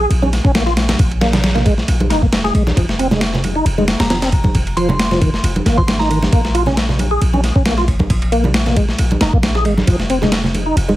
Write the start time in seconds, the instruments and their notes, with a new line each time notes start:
0.10 808-style bass A#1, ride
0.22 tonewheel organ C#4, high conga
0.33 snare, ride
0.44 808-style bass A#1, tonewheel organ C#4, kick
0.55 tonewheel organ A#3, snare, ride, high conga
0.66 tonewheel organ F4, snare
0.77 snare, ride
0.89 snare, ride, high conga
0.99 808-style bass A#1, kick, ride
1.11 ride
1.21 tonewheel organ A#3, snare, ride
1.33 snare, ride, high conga, low conga
1.44 snare, ride
1.55 tonewheel organ A#3, snare, low conga
1.65 tonewheel organ G#3, kick, ride
1.78 snare
1.88 808-style bass A#1, ride
2.00 ride, high conga
2.10 808-style bass F1, tonewheel organ D#4, snare, ride
2.22 tonewheel organ A#3, kick
2.32 snare, ride, high conga
2.44 tonewheel organ G#4, snare
2.54 808-style bass A#1, tonewheel organ G#3, ride
2.67 snare, high conga
2.77 808-style bass F1, tonewheel organ F3, kick, ride
2.89 snare
2.99 tonewheel organ C4, ride
3.11 tonewheel organ G#3, snare, high conga, low conga
3.21 snare, ride
3.34 snare, low conga
3.44 ride, high conga
3.55 tonewheel organ D#4
3.66 808-style bass F1, ride
3.78 tonewheel organ G#3, high conga
3.88 snare, ride
4.00 808-style bass F1, tonewheel organ G#3, synth bell A#5, snare, ride
4.10 tonewheel organ F3, synth bell A#5, snare, ride, high conga
4.22 tonewheel organ C4, snare, ride
4.32 kick, ride
4.44 kick, high conga
4.55 808-style bass F1, kick, ride
4.67 ride
4.77 tonewheel organ F3, synth bell C6, ride
4.89 high conga, low conga
4.99 snare, ride
5.11 tonewheel organ F3, snare, low conga
5.21 tonewheel organ D#3, kick, ride
5.34 snare
5.43 808-style bass F1, ride
5.56 ride, high conga
5.66 808-style bass G#1, tonewheel organ A#3, snare, ride
5.77 tonewheel organ F3, synth bell C6, kick
5.88 synth bell C6, snare, ride, high conga
5.99 tonewheel organ D#4, synth bell A#5, snare
6.10 tonewheel organ D#3, synth bell A#5, ride
6.23 snare, high conga
6.32 808-style bass A#1, tonewheel organ A#3, kick, ride
6.45 snare
6.54 tonewheel organ F4, ride
6.66 tonewheel organ C#4, snare, high conga, low conga
6.77 snare, ride
6.89 snare, low conga
6.99 ride, high conga
7.11 tonewheel organ G#4
7.22 808-style bass A#1, ride
7.33 tonewheel organ C#4, high conga
7.44 snare, ride
7.56 808-style bass A#1, tonewheel organ C#4, kick
7.66 tonewheel organ A#3, snare, ride, high conga
7.78 tonewheel organ F4, snare
7.88 kick, ride
7.99 kick, high conga
8.10 808-style bass A#1, kick, ride
8.22 ride
8.32 tonewheel organ A#3, ride
8.44 high conga, low conga
8.54 snare, ride
8.66 tonewheel organ A#3, snare, low conga
8.76 tonewheel organ G#3, kick, ride
8.89 snare
8.99 808-style bass A#1, ride
9.11 ride, high conga
9.21 808-style bass F1, tonewheel organ D#4, snare, ride
9.33 808-style bass A#1, tonewheel organ A#3, kick
9.43 snare, ride, high conga
9.55 tonewheel organ G#4, snare
9.65 808-style bass G#1, tonewheel organ G#3, ride
9.78 snare, high conga
9.87 808-style bass F1, tonewheel organ F3, kick, ride
10.00 snare
10.10 tonewheel organ C4, ride
10.22 tonewheel organ G#3, snare, high conga, low conga
10.32 snare, ride
10.44 snare, low conga
10.54 ride, high conga
10.66 tonewheel organ D#4
10.76 808-style bass F1, ride
10.88 tonewheel organ G#3, high conga